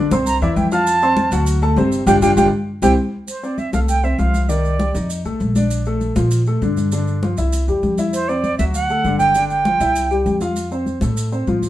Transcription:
0.11 C2 C4 C5 C6, high conga, maracas
0.26 A#5, high conga, maracas
0.41 E2 E3 E4 D5 E5, high conga, maracas
0.56 F2 G5, high conga, maracas
0.71 F4 F5 A5 F6, maracas
0.87 high conga, maracas
1.02 C4 C5 C6, high conga, maracas
1.17 high conga, maracas
1.32 D2 F#3 F#4 F#5, high conga, maracas
1.47 high conga, maracas
1.62 A3 A4 A5, high conga, maracas
1.76 G1 C3 C4 C5, high conga, maracas
1.92 high conga, maracas
2.07 G1 D4 F4 G4 G5, high conga, maracas
2.22 G1 D4 F4 G4 G5, high conga, maracas
2.37 G1 D4 F4 G4 G5, high conga, maracas
2.82 C2 C4 E4 G4 G5, high conga, maracas
3.28 C5, high conga, maracas
3.43 C4 C5 D5, high conga, maracas
3.58 E5, high conga, maracas
3.73 C2 A3 A4 F5, high conga, maracas
3.88 G5, high conga, maracas
4.03 C4 C5 E5, high conga, maracas
4.19 C2 F3 F4 F5, high conga, maracas
4.34 high conga, maracas
4.49 D#3 D#4 D5, high conga, maracas
4.64 high conga, maracas
4.79 G3 G4, high conga, maracas
4.95 F2 D#4 D#5, high conga, maracas
5.10 high conga, maracas
5.25 C2 A3 A4, high conga, maracas
5.40 A#1, high conga, maracas
5.55 D4 D5, high conga, maracas
5.71 maracas
5.86 A3 A4, high conga, maracas
6.01 high conga, maracas
6.16 A#2 F3 F4, high conga, maracas
6.31 high conga, maracas
6.46 A3 A4, high conga, maracas
6.62 G2 D3 D4, high conga, maracas
6.77 high conga, maracas
6.92 D3 D4, high conga, maracas
7.07 high conga, maracas
7.22 F3 F4, high conga, maracas
7.37 C2 E4 E5, high conga, maracas
7.53 high conga, maracas
7.68 E2 G3 G4, high conga, maracas
7.83 F2, high conga, maracas
7.98 E4 E5, high conga, maracas
8.13 C5, high conga, maracas
8.29 C4 C5 D5, high conga, maracas
8.44 high conga, maracas
8.58 D2 F#3 F#4 E5, high conga, maracas
8.74 F#5, high conga, maracas
8.89 A3 A4, high conga, maracas
9.04 G1 D3 D4, high conga, maracas
9.19 G5, high conga, maracas
9.35 D3 D4, high conga, maracas
9.49 G5, high conga, maracas
9.65 F3 F4, high conga, maracas
9.80 C2 E4 E5, high conga, maracas
9.96 high conga, maracas
10.11 G3 G4, high conga, maracas
10.26 F2, high conga, maracas
10.40 F4 F5, high conga, maracas
10.56 high conga, maracas
10.71 C4 C5, high conga, maracas
10.86 high conga, maracas
11.01 A2 A3 A4, high conga, maracas
11.17 high conga, maracas
11.32 C4 C5, high conga, maracas
11.47 A2 F3 F4, high conga, maracas
11.63 high conga, maracas

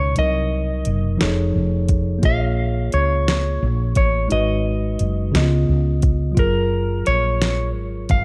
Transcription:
Already playing: C#2 B2 G#3 D#4 C#5
0.15 C2 C3 F#3 D#4, closed hi-hat
0.19 A#4 D#5
0.85 F#1, closed hi-hat
1.17 F3 D#4 G#4, snare, closed hi-hat
1.22 F1 A4 C#5
1.56 F1
1.88 kick, closed hi-hat
2.19 A#3 F4
2.23 A#1 G#4 F5, kick, closed hi-hat
2.29 C#5
2.92 C#2 C#5, closed hi-hat
3.28 snare, closed hi-hat
3.63 A#1
3.95 A1 C#5, kick, closed hi-hat
4.28 G#1 G#3 D#4 F#4 D#5, closed hi-hat
4.33 B4
4.99 F#1, closed hi-hat
5.32 C#2 C#3 B3 E4, snare, closed hi-hat
5.37 D#5
5.42 F4
5.69 C#2
6.02 kick, closed hi-hat
6.32 F#3 F4
6.37 F#1 G#4 A#4, kick, closed hi-hat
6.41 A#4
7.06 A#1 C#5, closed hi-hat
7.42 snare, closed hi-hat
7.77 G#1
8.09 G1 F5, kick, closed hi-hat

